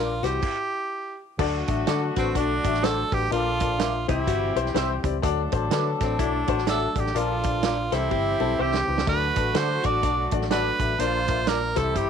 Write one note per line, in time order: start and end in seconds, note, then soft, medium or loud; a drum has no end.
0.00 0.20 A#1 loud
0.00 0.20 A#2 medium
0.00 0.23 F3 medium
0.00 0.23 A#3 medium
0.00 0.11 D4 medium
0.00 0.21 D4 medium
0.00 0.11 F4 medium
0.00 0.26 F4 loud
0.00 0.11 A#4 medium
0.00 0.22 A#4 medium
0.00 0.11 D5 medium
0.22 0.38 C2 medium
0.22 0.42 E3 medium
0.22 0.42 G3 medium
0.22 0.42 C4 medium
0.22 0.39 C4 medium
0.22 0.39 E4 medium
0.22 0.42 F#4 medium
0.22 0.39 G4 medium
0.22 1.20 G4 loud
0.22 0.39 C5 medium
0.22 snare soft
0.22 closed hi-hat medium
0.42 1.16 E4 medium
0.42 kick loud
0.42 crash medium
1.38 1.62 D2 loud
1.38 2.12 D3 medium
1.38 3.09 D3 medium
1.38 3.29 F#3 medium
1.38 3.29 A3 medium
1.38 3.09 A3 medium
1.38 4.05 D4 medium
1.38 1.56 D4 loud
1.38 3.09 F#4 medium
1.38 1.56 F#4 loud
1.38 1.56 A4 loud
1.38 1.56 D5 loud
1.38 kick loud
1.38 crash loud
1.68 1.83 A1 medium
1.68 1.79 D4 medium
1.68 1.79 F#4 medium
1.68 1.79 A4 medium
1.68 1.79 E5 medium
1.68 kick loud
1.68 closed hi-hat medium
1.87 2.10 D3 medium
1.87 2.04 D4 medium
1.87 1.99 F#4 medium
1.87 2.04 F#4 medium
1.87 2.15 A4 medium
1.87 2.00 A4 medium
1.87 2.04 A4 medium
1.87 2.04 D5 medium
1.87 2.00 D5 medium
1.87 snare loud
1.87 closed hi-hat medium
2.16 2.31 A1 medium
2.16 2.38 C4 medium
2.16 2.27 D4 medium
2.16 2.27 F#4 medium
2.16 2.34 F#4 medium
2.16 2.27 A4 medium
2.16 2.27 B4 medium
2.16 kick medium
2.16 snare soft
2.16 closed hi-hat medium
2.35 2.58 B1 medium
2.35 2.52 D4 medium
2.35 3.09 D4 medium
2.35 2.86 D4 medium
2.35 2.52 F#4 medium
2.35 2.52 A4 medium
2.35 2.52 D5 medium
2.35 kick medium
2.35 closed hi-hat medium
2.64 3.02 A1 loud
2.64 2.75 D4 medium
2.64 2.75 F#4 medium
2.64 2.75 A4 medium
2.64 2.75 E5 loud
2.64 kick medium
2.64 closed hi-hat medium
2.74 snare soft
2.82 3.00 D4 loud
2.82 2.95 F#4 medium
2.82 3.00 F#4 medium
2.82 2.96 A4 loud
2.82 3.00 A4 loud
2.82 3.15 A4 loud
2.82 3.00 C5 loud
2.82 2.96 D5 medium
2.82 snare loud
2.82 closed hi-hat medium
3.11 3.27 A1 medium
3.11 3.23 D4 medium
3.11 3.23 F#4 medium
3.11 3.32 G4 loud
3.11 3.23 A4 medium
3.11 3.23 B4 medium
3.11 kick loud
3.11 open hi-hat soft
3.31 4.04 A#1 loud
3.31 4.04 A#2 medium
3.31 4.07 F3 medium
3.31 3.79 F3 medium
3.31 4.07 A#3 medium
3.31 3.48 D4 loud
3.31 3.78 D4 medium
3.31 3.48 F4 medium
3.31 4.05 F4 loud
3.31 3.78 A4 medium
3.31 3.48 A#4 medium
3.31 3.48 D5 loud
3.31 closed hi-hat medium
3.60 3.71 D4 medium
3.60 3.72 F4 medium
3.60 3.72 A#4 medium
3.60 3.72 D5 medium
3.60 kick loud
3.60 closed hi-hat medium
3.78 3.96 D4 medium
3.78 3.91 F4 medium
3.78 3.96 F4 medium
3.78 3.92 A#4 medium
3.78 3.96 A#4 medium
3.78 3.92 D5 medium
3.78 3.96 E5 medium
3.78 snare loud
3.78 closed hi-hat loud
4.07 4.24 C2 loud
4.07 4.71 C3 medium
4.07 5.22 E3 medium
4.07 5.02 E3 medium
4.07 5.22 G3 medium
4.07 4.44 C4 medium
4.07 5.22 C4 medium
4.07 5.03 C4 medium
4.07 4.45 E4 medium
4.07 4.26 E4 medium
4.07 4.72 E4 medium
4.07 5.02 G4 loud
4.07 4.45 G4 medium
4.07 4.45 C5 medium
4.07 kick loud
4.07 closed hi-hat medium
4.27 4.50 G1 medium
4.27 4.55 F#4 medium
4.27 kick medium
4.27 closed hi-hat medium
4.56 4.71 B1 medium
4.56 4.67 C4 medium
4.56 4.67 E4 medium
4.56 4.67 G4 medium
4.56 5.20 G4 medium
4.56 4.67 C5 loud
4.56 closed hi-hat medium
4.66 snare soft
4.74 4.97 C2 medium
4.74 4.92 C4 loud
4.74 4.92 E4 loud
4.74 4.87 G4 medium
4.74 4.92 G4 loud
4.74 4.92 C5 loud
4.74 4.88 C5 loud
4.74 4.88 E5 loud
4.74 snare loud
4.74 closed hi-hat medium
5.03 5.19 C#2 medium
5.03 5.15 C4 medium
5.03 5.15 E4 medium
5.03 5.15 G4 medium
5.03 5.15 D5 medium
5.03 kick loud
5.03 closed hi-hat medium
5.21 5.46 D2 loud
5.21 5.96 D3 medium
5.21 7.13 F#3 medium
5.21 6.92 F#3 medium
5.21 7.12 A3 medium
5.21 7.12 D4 medium
5.21 6.92 D4 medium
5.21 5.39 D4 loud
5.21 5.40 F#4 loud
5.21 6.92 A4 medium
5.21 5.40 A4 loud
5.21 5.40 D5 loud
5.21 kick loud
5.21 closed hi-hat medium
5.52 5.67 A1 medium
5.52 5.63 D4 medium
5.52 5.63 F#4 medium
5.52 5.63 A4 medium
5.52 5.63 C5 medium
5.52 kick loud
5.52 closed hi-hat medium
5.71 5.93 D3 loud
5.71 5.88 D4 medium
5.71 5.83 F#4 medium
5.71 5.88 F#4 medium
5.71 5.84 A4 loud
5.71 5.88 A4 medium
5.71 5.88 B4 loud
5.71 5.84 D5 loud
5.71 snare loud
5.71 closed hi-hat medium
6.00 6.16 A1 medium
6.00 6.23 C4 medium
6.00 6.12 D4 medium
6.00 6.12 F#4 medium
6.00 6.12 A4 medium
6.00 6.12 D5 medium
6.00 kick medium
6.00 snare soft
6.00 closed hi-hat medium
6.19 6.42 B1 medium
6.19 6.36 D4 medium
6.19 6.68 D4 medium
6.19 6.47 E4 medium
6.19 6.36 F#4 medium
6.19 6.36 A4 medium
6.19 6.36 D5 medium
6.19 kick medium
6.19 closed hi-hat medium
6.47 6.86 A1 medium
6.47 6.59 D4 medium
6.47 6.66 F#4 medium
6.47 6.59 F#4 medium
6.47 6.60 A4 medium
6.47 6.60 C5 loud
6.47 kick medium
6.47 closed hi-hat medium
6.58 snare soft
6.67 7.13 D4 medium
6.67 6.84 D4 loud
6.67 6.80 F#4 medium
6.67 6.84 F#4 medium
6.67 6.80 A4 medium
6.67 6.84 A4 medium
6.67 7.00 A4 medium
6.67 6.81 D5 loud
6.67 6.85 E5 loud
6.67 snare loud
6.67 closed hi-hat loud
6.95 7.11 A1 medium
6.95 7.07 D4 medium
6.95 7.07 F#4 medium
6.95 7.19 G4 medium
6.95 7.07 A4 medium
6.95 7.07 D5 medium
6.95 kick loud
6.95 closed hi-hat medium
7.06 snare soft
7.14 7.88 A#1 loud
7.14 7.88 A#2 medium
7.14 7.62 F3 medium
7.14 7.92 F3 medium
7.14 7.92 A#3 medium
7.14 7.31 D4 medium
7.14 7.62 D4 medium
7.14 7.92 D4 medium
7.14 7.32 F4 medium
7.14 7.95 F4 loud
7.14 7.62 A4 medium
7.14 7.32 A#4 medium
7.14 7.32 D5 loud
7.14 closed hi-hat medium
7.43 7.55 D4 medium
7.43 7.55 F4 medium
7.43 7.55 A#4 medium
7.43 7.55 D5 medium
7.43 kick loud
7.43 closed hi-hat medium
7.63 7.80 D4 medium
7.63 7.80 F4 medium
7.63 7.76 F4 medium
7.63 7.80 A#4 medium
7.63 7.76 A#4 medium
7.63 7.80 D5 medium
7.63 7.77 D5 medium
7.63 snare loud
7.63 closed hi-hat medium
7.91 8.07 C2 medium
7.91 8.55 C3 medium
7.91 8.86 E3 medium
7.91 9.06 E3 medium
7.91 9.06 G3 medium
7.91 8.28 C4 medium
7.91 8.86 C4 medium
7.91 9.06 C4 medium
7.91 8.28 E4 medium
7.91 8.63 E4 loud
7.91 8.29 G4 medium
7.91 8.86 G4 medium
7.91 8.10 A4 medium
7.91 8.29 C5 medium
7.91 snare soft
7.91 closed hi-hat medium
8.11 8.34 G1 medium
8.11 8.39 G4 medium
8.11 kick medium
8.40 8.55 B1 medium
8.40 8.51 C4 loud
8.40 9.04 C4 medium
8.40 8.51 E4 medium
8.40 8.51 G4 medium
8.40 8.51 A4 loud
8.59 8.82 C2 medium
8.59 8.76 C4 loud
8.59 8.76 E4 medium
8.59 8.71 G4 medium
8.59 8.76 G4 loud
8.59 9.08 G4 loud
8.59 8.76 C5 loud
8.59 8.72 C5 medium
8.59 8.72 E5 loud
8.74 snare medium
8.88 9.03 C#2 medium
8.88 8.99 C4 medium
8.88 8.99 E4 medium
8.88 8.99 G4 medium
8.88 8.99 B4 medium
8.98 snare medium
9.07 9.30 D2 loud
9.07 9.80 D3 medium
9.07 10.77 D3 medium
9.07 10.97 F#3 medium
9.07 10.97 A3 medium
9.07 10.77 A3 medium
9.07 9.24 D4 medium
9.07 11.74 D4 medium
9.07 9.24 F#4 medium
9.07 10.77 F#4 medium
9.07 9.24 A4 medium
9.07 9.59 B4 loud
9.07 9.24 D5 loud
9.07 kick loud
9.07 splash medium
9.36 9.51 A1 medium
9.36 9.47 D4 medium
9.36 9.47 F#4 medium
9.36 9.47 A4 medium
9.36 9.47 B4 medium
9.36 kick loud
9.36 closed hi-hat medium
9.55 9.78 D3 medium
9.55 9.72 D4 medium
9.55 9.67 F#4 medium
9.55 9.72 F#4 medium
9.55 9.82 A4 medium
9.55 9.72 A4 medium
9.55 9.68 A4 medium
9.55 9.72 C5 medium
9.55 9.87 C5 loud
9.55 9.68 D5 loud
9.55 snare loud
9.55 closed hi-hat loud
9.84 9.99 A1 medium
9.84 9.95 D4 medium
9.84 10.02 F#4 medium
9.84 9.95 F#4 medium
9.84 9.95 A4 medium
9.84 9.95 D5 medium
9.84 10.29 D5 loud
9.84 kick medium
9.84 closed hi-hat medium
10.03 10.26 B1 medium
10.03 10.20 D4 medium
10.03 10.76 D4 medium
10.03 10.20 F#4 medium
10.03 10.20 A4 medium
10.03 10.20 D5 medium
10.03 kick medium
10.03 closed hi-hat medium
10.31 10.70 A1 loud
10.31 10.43 D4 loud
10.31 10.43 F#4 medium
10.31 10.43 A4 medium
10.31 10.43 D5 loud
10.31 kick medium
10.31 closed hi-hat medium
10.42 snare soft
10.51 10.68 D4 loud
10.51 10.68 F#4 medium
10.51 10.64 F#4 medium
10.51 10.68 A4 medium
10.51 10.64 A4 medium
10.51 11.01 B4 loud
10.51 10.68 D5 loud
10.51 10.65 D5 medium
10.51 snare loud
10.51 closed hi-hat medium
10.79 10.95 A1 medium
10.79 10.91 D4 medium
10.79 10.91 F#4 medium
10.79 10.91 A4 medium
10.79 10.91 E5 medium
10.79 kick loud
10.79 closed hi-hat medium
10.99 11.72 A#1 loud
10.99 11.72 A#2 medium
10.99 11.47 D3 medium
10.99 11.76 F3 medium
10.99 11.46 A#3 medium
10.99 11.76 A#3 medium
10.99 11.16 D4 loud
10.99 11.16 F4 medium
10.99 11.47 F4 medium
10.99 11.16 A#4 medium
10.99 11.50 C5 loud
10.99 11.16 D5 loud
10.99 closed hi-hat loud
11.28 11.39 D4 medium
11.28 11.39 F4 medium
11.28 11.39 A#4 medium
11.28 11.39 E5 medium
11.28 kick loud
11.28 closed hi-hat medium
11.47 11.64 D4 medium
11.47 11.60 F4 medium
11.47 11.64 F4 medium
11.47 11.64 A#4 medium
11.47 11.60 A#4 medium
11.47 11.79 A#4 loud
11.47 11.64 D5 medium
11.47 11.60 D5 medium
11.47 snare loud
11.47 closed hi-hat medium
11.75 11.91 C2 loud
11.75 12.10 C3 medium
11.75 12.10 E3 medium
11.75 12.10 G3 medium
11.75 12.10 C4 medium
11.75 12.10 E4 medium
11.75 12.10 G4 medium
11.75 11.94 A4 medium
11.75 11.98 A4 medium
11.75 12.10 C5 medium
11.75 kick medium
11.75 snare soft
11.75 closed hi-hat medium
11.96 12.10 G1 medium
11.96 12.10 G4 medium
11.96 kick medium
11.96 closed hi-hat medium